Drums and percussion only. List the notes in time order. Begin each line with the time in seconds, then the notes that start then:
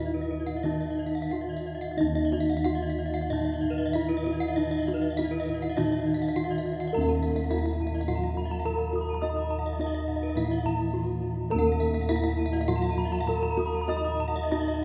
0.13 kendang slap
0.30 kendang low
0.47 kendang slap
0.64 kendang high, kendang low
1.49 kendang slap
1.82 kendang slap
2.16 kendang slap
2.32 kendang high
2.65 kendang high
2.82 kendang slap
3.14 kendang slap
3.30 kendang low
3.63 kendang low
3.94 kendang low
4.11 kendang slap
4.26 kendang high
4.43 kendang slap
4.73 kendang slap
4.88 kendang high
5.04 kendang slap
5.19 kendang high, kendang low
5.34 kendang slap
5.49 kendang low
5.63 kendang slap
5.78 kendang high, kendang low
5.93 kendang slap
6.52 kendang slap
6.81 kendang slap
7.09 kendang slap
7.52 kendang high
7.66 kendang slap
7.80 kendang low
7.94 kendang slap
8.08 kendang low
8.22 kendang slap
8.36 kendang low
8.50 kendang slap
8.65 kendang low
8.79 kendang slap
8.93 kendang high
9.08 kendang slap
9.22 kendang high
9.36 kendang slap
9.79 kendang high
9.93 kendang slap
10.08 kendang low
10.21 kendang slap
10.36 kendang low
10.51 kendang slap
10.65 kendang low
11.67 kendang slap
12.09 kendang high
12.23 kendang slap
12.38 kendang low
12.53 kendang slap
12.68 kendang low
12.83 kendang slap
12.97 kendang low
13.12 kendang slap
13.27 kendang low
13.42 kendang slap
13.57 kendang high
13.73 kendang slap
13.88 kendang high
14.04 kendang slap
14.35 kendang slap
14.51 kendang high
14.68 kendang slap